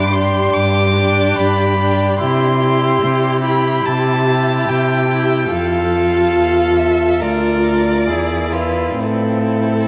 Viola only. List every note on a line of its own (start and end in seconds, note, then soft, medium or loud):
0.00 0.11 D4 soft
0.13 0.94 D4 soft
0.95 1.77 D4 medium
1.79 2.19 D4 soft
2.20 2.59 E4 soft
2.61 3.42 E4 soft
3.44 4.26 E4 soft
4.27 5.08 E4 soft
5.10 5.51 E4 soft
5.51 7.18 F4 soft
7.23 8.11 F4 soft
8.09 9.00 E4 soft
9.01 9.88 C4 soft